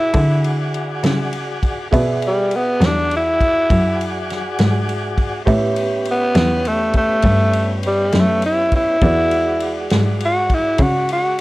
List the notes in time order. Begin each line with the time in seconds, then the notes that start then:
Already playing: B2 E4 F#4 G#4 B4 D5 F#5
0.14 D3, kick, ride
0.44 ride
0.74 ride
1.03 C#3, snare, ride
1.32 ride
1.63 kick, ride
1.91 B2 F#4 G#4 B4 D5 E5, kick, ride
2.22 ride
2.27 G3
2.51 ride
2.56 B3
2.81 E2, snare, ride
2.86 D4
3.11 ride
3.17 E4
3.41 kick, ride
3.70 F#2, kick, ride
4.01 ride
4.30 snare, ride
4.59 G#2, snare, ride
4.89 ride
5.18 kick, ride
5.45 A2 B3 C#4 G4 B4 C#5 E5, kick, ride
5.76 ride
6.05 ride
6.11 B3
6.35 E2, snare, ride
6.65 A3, ride
6.94 A3, kick, ride
7.22 G2, kick, ride
7.53 ride
7.83 ride
7.87 G3
8.12 F#2, snare, ride
8.20 A3
8.42 E4, ride
8.72 kick, ride
8.76 E4
9.01 E2 G#3 F#4 G#4 B4 D5, kick, ride
9.31 ride
9.60 ride
9.90 G#2, snare, ride
10.21 ride
10.25 F#4
10.50 kick, ride
10.54 E4
10.78 C#3 F#4, kick, ride
11.08 F#4, ride